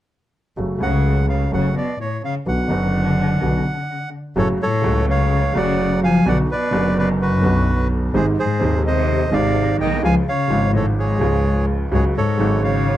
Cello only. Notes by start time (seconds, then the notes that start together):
0.82 C#3
1.29 C#3
1.52 C#3
1.76 B2
2.00 A2
2.23 C#3
2.47 D3
4.37 A2
4.61 A2
5.09 C#3
5.57 C#3
6.04 F3
6.27 D3
6.50 B2
6.98 B2
7.22 F#2
8.15 G#2
8.38 G#2
8.85 C3
9.33 C3
9.80 D#3
10.03 F3
10.26 C#3
10.73 A2
10.97 G#2
11.93 G#2
12.15 G#2
12.63 C#3